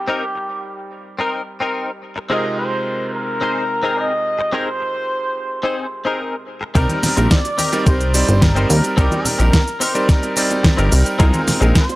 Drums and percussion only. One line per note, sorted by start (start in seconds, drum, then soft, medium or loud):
6.75 kick loud
6.75 closed hi-hat medium
6.75 tambourine soft
6.75 high bongo medium
6.75 cabasa soft
6.89 closed hi-hat soft
6.89 high conga medium
6.89 cabasa soft
7.03 snare medium
7.03 open hi-hat loud
7.03 tambourine medium
7.03 high bongo medium
7.03 low conga loud
7.03 cabasa medium
7.17 closed hi-hat soft
7.17 tambourine medium
7.17 cabasa soft
7.31 kick loud
7.31 snare loud
7.31 closed hi-hat medium
7.31 cabasa soft
7.45 closed hi-hat soft
7.45 high bongo medium
7.45 cabasa soft
7.59 open hi-hat loud
7.59 tambourine medium
7.59 high conga medium
7.59 cabasa medium
7.73 closed hi-hat soft
7.73 tambourine soft
7.73 high bongo medium
7.73 cabasa soft
7.87 kick loud
7.87 closed hi-hat medium
7.87 tambourine soft
7.87 cabasa soft
8.01 closed hi-hat soft
8.01 cabasa soft
8.14 open hi-hat loud
8.14 tambourine medium
8.14 high bongo medium
8.14 cabasa medium
8.28 closed hi-hat soft
8.28 tambourine medium
8.28 cabasa soft
8.42 kick loud
8.42 snare loud
8.42 closed hi-hat medium
8.42 tambourine soft
8.42 high bongo medium
8.42 high conga medium
8.42 cabasa soft
8.56 closed hi-hat soft
8.56 cabasa soft
8.70 open hi-hat loud
8.70 tambourine medium
8.70 cabasa medium
8.83 closed hi-hat soft
8.83 tambourine medium
8.83 high bongo medium
8.83 cabasa soft
8.98 kick loud
8.98 closed hi-hat medium
8.98 tambourine soft
8.98 cabasa soft
9.11 closed hi-hat soft
9.11 high bongo medium
9.11 high conga medium
9.11 cabasa soft
9.25 open hi-hat loud
9.25 tambourine medium
9.25 low conga loud
9.25 cabasa medium
9.40 closed hi-hat soft
9.40 tambourine medium
9.40 cabasa soft
9.53 kick loud
9.53 snare loud
9.53 closed hi-hat medium
9.53 tambourine soft
9.53 high bongo soft
9.53 cabasa soft
9.68 closed hi-hat soft
9.68 cabasa soft
9.80 open hi-hat loud
9.80 tambourine medium
9.80 high bongo medium
9.80 cabasa medium
9.94 closed hi-hat soft
9.94 tambourine medium
9.94 cabasa soft
10.09 kick loud
10.09 snare medium
10.09 closed hi-hat medium
10.09 tambourine soft
10.09 cabasa soft
10.23 closed hi-hat soft
10.23 high bongo medium
10.23 cabasa soft
10.36 open hi-hat loud
10.36 tambourine medium
10.36 cabasa medium
10.51 closed hi-hat soft
10.51 tambourine soft
10.51 high bongo medium
10.51 cabasa soft
10.64 kick loud
10.64 snare loud
10.64 closed hi-hat medium
10.64 tambourine soft
10.64 high conga medium
10.64 cabasa soft
10.78 closed hi-hat soft
10.78 cabasa soft
10.92 open hi-hat loud
10.92 tambourine loud
10.92 high bongo medium
10.92 cabasa medium
11.06 closed hi-hat soft
11.06 tambourine soft
11.06 cabasa soft
11.20 kick loud
11.20 closed hi-hat medium
11.20 tambourine soft
11.20 high bongo medium
11.20 cabasa soft
11.34 closed hi-hat soft
11.34 high conga medium
11.34 cabasa soft
11.48 snare medium
11.48 open hi-hat loud
11.48 tambourine loud
11.48 low conga loud
11.48 cabasa medium
11.62 closed hi-hat soft
11.62 tambourine soft
11.62 high bongo soft
11.62 cabasa soft
11.75 kick loud
11.75 snare loud
11.75 closed hi-hat medium
11.75 tambourine soft
11.75 cabasa soft
11.89 closed hi-hat soft
11.89 high bongo medium
11.89 cabasa soft